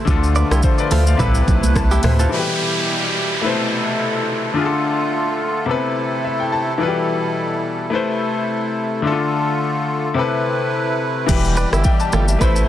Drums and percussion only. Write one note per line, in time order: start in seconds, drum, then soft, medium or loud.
0.08 kick loud
0.08 low conga medium
0.08 shaker medium
0.23 shaker medium
0.35 high conga medium
0.35 shaker medium
0.51 cross-stick loud
0.51 shaker medium
0.63 kick loud
0.63 shaker medium
0.78 shaker medium
0.91 open hi-hat medium
0.91 high conga medium
0.91 low conga medium
0.91 shaker medium
1.07 shaker medium
1.19 kick medium
1.19 mid tom loud
1.19 shaker medium
1.34 shaker medium
1.48 kick medium
1.48 high conga medium
1.48 shaker medium
1.63 high conga medium
1.63 shaker medium
1.76 kick loud
1.76 cross-stick medium
1.76 shaker medium
1.91 high conga medium
1.91 shaker medium
2.03 cross-stick loud
2.03 mid tom loud
2.03 open hi-hat medium
2.03 high conga medium
2.03 low conga medium
2.03 shaker medium
2.19 shaker medium
11.29 kick loud
11.29 crash loud
11.29 low conga medium
11.29 shaker medium
11.45 shaker medium
11.57 shaker medium
11.73 cross-stick loud
11.73 shaker medium
11.84 kick loud
11.84 shaker medium
12.00 shaker medium
12.12 cross-stick medium
12.12 high conga medium
12.12 low conga medium
12.12 shaker medium
12.28 shaker medium
12.41 kick medium
12.41 shaker medium
12.56 shaker medium